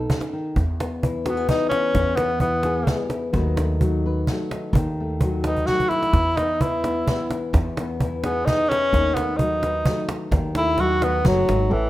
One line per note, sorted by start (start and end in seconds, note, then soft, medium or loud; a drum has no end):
0.00 0.54 D#4 medium
0.00 0.59 F#4 medium
0.00 0.54 A4 medium
0.10 0.32 C#3 medium
0.10 cajon bass medium
0.10 snare medium
0.21 cajon slap medium
0.33 0.56 D#3 medium
0.56 1.96 E2 medium
0.56 1.45 E2 medium
0.56 cajon bass medium
0.56 kick medium
0.56 cajon slap soft
0.80 1.49 B3 medium
0.80 cajon slap medium
1.02 1.48 E3 medium
1.02 1.71 E4 medium
1.02 cajon bass medium
1.26 1.48 B3 medium
1.26 1.37 F#4 medium
1.26 cajon slap medium
1.37 1.95 G#4 medium
1.49 2.40 E3 medium
1.49 2.19 B3 soft
1.49 1.69 D#4 medium
1.49 cajon bass medium
1.49 snare medium
1.69 2.17 C#4 medium
1.69 1.93 E4 soft
1.69 cajon slap medium
1.95 2.85 E2 loud
1.95 3.36 E2 medium
1.95 cajon bass loud
1.95 kick medium
1.95 cajon slap soft
2.16 2.40 B3 medium
2.16 2.87 B3 medium
2.16 cajon slap medium
2.40 2.86 E3 medium
2.40 3.07 B3 medium
2.40 3.09 E4 medium
2.40 cajon bass medium
2.63 3.32 G#4 medium
2.63 cajon slap medium
2.86 3.33 E3 medium
2.86 3.33 B3 soft
2.86 cajon bass medium
2.86 snare medium
3.10 3.32 E4 medium
3.10 cajon slap medium
3.33 4.23 D#2 loud
3.33 4.71 D#3 medium
3.33 3.80 F#3 medium
3.33 3.57 A3 medium
3.33 3.81 D#4 medium
3.33 4.05 B4 medium
3.33 cajon bass medium
3.33 kick medium
3.33 cajon slap soft
3.57 4.28 A3 medium
3.57 cajon slap medium
3.80 4.27 F#3 medium
3.80 4.50 D#4 medium
3.80 cajon bass medium
4.06 5.03 B4 medium
4.27 4.72 F#3 medium
4.27 4.98 A3 medium
4.27 cajon bass medium
4.27 snare medium
4.51 4.72 D#4 soft
4.51 cajon slap medium
4.73 5.63 D#2 loud
4.73 6.11 D#3 medium
4.73 kick medium
4.73 cajon bass medium
4.96 ride medium
5.00 5.68 A3 medium
5.10 cajon slap soft
5.20 5.67 F#3 medium
5.20 cajon bass medium
5.20 ride soft
5.24 6.13 F#4 medium
5.44 5.68 D#4 medium
5.44 8.25 B4 medium
5.44 cajon slap medium
5.57 cajon bass soft
5.66 6.12 F#3 medium
5.66 5.92 A3 soft
5.66 5.91 F#4 medium
5.66 cajon bass medium
5.66 snare soft
5.80 cajon bass medium
5.89 6.38 E4 medium
5.89 cajon slap medium
5.94 6.16 A3 medium
6.03 cajon slap medium
6.13 7.03 E2 medium
6.13 7.54 E2 medium
6.13 kick medium
6.13 cajon bass medium
6.13 cajon slap soft
6.37 6.61 B3 medium
6.37 6.63 D#4 medium
6.37 cajon slap medium
6.61 7.07 E3 medium
6.61 6.85 B3 medium
6.61 7.31 E4 medium
6.61 cajon bass medium
6.84 7.09 B3 medium
6.84 cajon slap medium
7.07 8.01 E3 medium
7.07 7.79 B3 medium
7.07 cajon bass medium
7.07 snare medium
7.30 7.52 E4 medium
7.30 cajon slap medium
7.53 8.43 E2 loud
7.53 8.94 E2 medium
7.53 kick medium
7.53 cajon bass loud
7.53 cajon slap soft
7.77 8.48 B3 medium
7.77 cajon slap medium
8.00 8.46 E3 medium
8.00 8.70 E4 medium
8.00 cajon bass medium
8.00 ride soft
8.24 8.47 B3 medium
8.24 8.91 G#4 medium
8.24 cajon slap medium
8.45 8.93 E3 medium
8.45 9.18 B3 medium
8.45 8.70 D#4 loud
8.45 cajon bass medium
8.45 snare medium
8.69 9.16 C#4 loud
8.69 8.91 E4 medium
8.69 cajon slap medium
8.93 9.82 D#2 medium
8.93 10.29 D#3 medium
8.93 kick medium
8.93 cajon bass medium
8.93 cajon slap soft
9.14 9.88 A3 medium
9.14 9.38 B3 medium
9.14 cajon slap medium
9.37 9.87 F#3 medium
9.37 10.08 D#4 medium
9.37 cajon bass medium
9.42 10.10 D#4 medium
9.63 10.30 B4 medium
9.63 cajon slap medium
9.85 10.78 F#3 medium
9.85 10.55 A3 medium
9.85 cajon bass medium
9.85 snare medium
10.09 10.31 D#4 medium
10.09 cajon slap medium
10.32 11.21 D#2 loud
10.32 11.69 D#3 medium
10.32 kick medium
10.32 cajon bass loud
10.32 cajon slap soft
10.55 11.25 A3 medium
10.55 10.82 E4 loud
10.55 cajon slap medium
10.78 11.23 F#3 medium
10.78 11.47 D#4 medium
10.78 11.05 F#4 loud
10.78 cajon bass medium
10.78 cajon slap soft
11.02 11.26 B3 medium
11.02 11.69 B4 medium
11.02 cajon slap medium
11.24 11.46 F#1 medium
11.24 11.68 F#3 medium
11.24 11.74 F#3 medium
11.24 11.90 A3 medium
11.24 cajon bass medium
11.24 snare medium
11.48 11.70 G#1 medium
11.48 11.69 D#4 medium
11.48 cajon slap medium
11.60 cajon slap soft
11.69 11.90 A1 medium
11.69 11.90 A2 medium
11.69 11.90 E3 medium
11.69 11.90 A4 medium